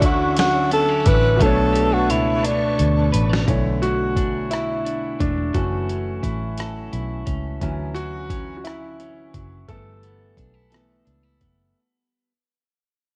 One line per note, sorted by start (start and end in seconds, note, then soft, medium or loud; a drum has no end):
0.00 1.08 D2 loud
0.00 1.34 D3 medium
0.00 1.43 D3 medium
0.00 0.37 E3 medium
0.00 0.71 C#4 medium
0.00 1.36 C#4 medium
0.00 1.39 C#4 medium
0.00 1.38 E4 medium
0.00 1.04 E4 medium
0.00 1.39 F#4 medium
0.00 1.35 F#5 medium
0.00 1.39 D6 medium
0.00 1.36 E6 medium
0.00 kick medium
0.00 closed hi-hat medium
0.05 0.38 F#4 medium
0.37 1.39 F#3 medium
0.37 0.70 F#4 loud
0.37 snare loud
0.37 closed hi-hat medium
0.71 0.89 B3 medium
0.71 1.08 A4 loud
0.71 closed hi-hat medium
0.89 1.47 C#4 medium
1.05 1.38 A1 loud
1.05 1.47 E4 medium
1.05 1.44 B4 loud
1.05 kick loud
1.05 closed hi-hat medium
1.36 3.41 B2 medium
1.36 3.43 A3 medium
1.36 3.83 B3 medium
1.36 3.45 C#6 medium
1.40 2.11 B1 loud
1.40 3.45 D4 medium
1.40 1.95 A4 loud
1.40 3.45 B4 medium
1.40 2.10 C#5 medium
1.40 3.45 A5 medium
1.40 kick loud
1.40 closed hi-hat medium
1.46 3.46 C#5 medium
1.73 1.92 G4 medium
1.73 closed hi-hat medium
1.92 2.12 F#4 loud
1.92 2.77 A4 medium
2.10 2.75 C#2 loud
2.10 2.47 E4 medium
2.10 3.12 C#5 medium
2.10 closed hi-hat medium
2.43 4.17 D4 medium
2.43 3.22 D4 medium
2.43 closed hi-hat medium
2.78 3.10 D2 loud
2.78 3.47 A4 medium
2.78 closed hi-hat medium
3.12 3.45 A1 loud
3.12 3.29 B4 medium
3.12 closed hi-hat medium
3.29 3.54 C#5 medium
3.29 snare loud
3.47 5.16 B1 medium
3.47 5.54 B2 medium
3.47 5.50 D3 soft
3.47 5.51 E3 soft
3.47 5.51 A3 soft
3.47 4.50 E4 medium
3.47 5.51 C#5 medium
3.47 kick medium
3.47 closed hi-hat medium
3.82 5.19 A3 medium
3.82 4.47 F#4 medium
3.82 closed hi-hat soft
4.17 4.84 D4 medium
4.17 kick medium
4.17 closed hi-hat medium
4.51 6.22 E4 medium
4.51 5.16 E4 medium
4.51 cross-stick loud
4.51 closed hi-hat medium
4.85 5.61 D4 soft
4.85 closed hi-hat soft
5.20 5.52 E1 medium
5.20 5.53 A3 medium
5.20 5.55 D4 medium
5.20 kick medium
5.20 closed hi-hat medium
5.54 6.20 F#1 medium
5.54 7.57 E3 soft
5.54 7.66 F#3 medium
5.54 7.58 A3 soft
5.54 7.58 C#4 medium
5.54 7.23 F#4 medium
5.54 6.59 A4 medium
5.54 kick medium
5.54 closed hi-hat medium
5.89 7.26 C#4 soft
5.89 closed hi-hat soft
6.23 6.88 A1 medium
6.23 6.92 E4 medium
6.23 kick medium
6.23 closed hi-hat medium
6.58 9.69 A4 medium
6.58 cross-stick medium
6.58 closed hi-hat medium
6.93 7.24 B1 medium
6.93 7.63 E4 soft
6.93 closed hi-hat soft
7.26 7.58 C#2 medium
7.26 8.30 C#4 medium
7.26 kick medium
7.26 closed hi-hat medium
7.62 9.30 D2 medium
7.62 10.57 D3 medium
7.62 9.64 E3 soft
7.62 9.65 F#3 soft
7.62 9.65 C#4 soft
7.62 8.65 E4 soft
7.62 kick medium
7.62 closed hi-hat medium
7.95 9.33 F#3 soft
7.95 8.53 F#4 loud
7.95 closed hi-hat soft
8.30 8.99 C#4 medium
8.30 kick medium
8.30 closed hi-hat medium
8.57 8.64 F#4 medium
8.64 9.29 E4 medium
8.64 10.37 E4 medium
8.64 cross-stick medium
8.64 closed hi-hat medium
9.00 9.76 C#4 soft
9.00 closed hi-hat soft
9.34 9.65 F#1 medium
9.34 9.68 F#3 soft
9.34 kick medium
9.34 closed hi-hat medium
9.68 10.34 G1 medium
9.68 10.15 E3 soft
9.68 12.32 G3 medium
9.68 10.15 A3 soft
9.68 10.16 B3 soft
9.68 11.37 A4 medium
9.68 10.70 A4 soft
9.68 kick medium
9.68 closed hi-hat medium
10.03 11.40 B3 soft
10.03 closed hi-hat soft
10.37 11.02 B1 medium
10.37 10.54 D4 soft
10.37 kick medium
10.37 closed hi-hat medium
10.54 11.05 E4 soft
10.71 11.03 E3 soft
10.71 11.03 A3 soft
10.71 11.03 B3 soft
10.71 12.32 A4 medium
10.71 cross-stick medium
10.71 closed hi-hat soft
11.05 11.43 C#2 medium
11.05 11.23 D4 soft
11.05 closed hi-hat soft
11.23 11.82 E4 soft
11.41 11.72 F#1 medium
11.41 12.32 B3 soft
11.41 kick medium
11.41 closed hi-hat medium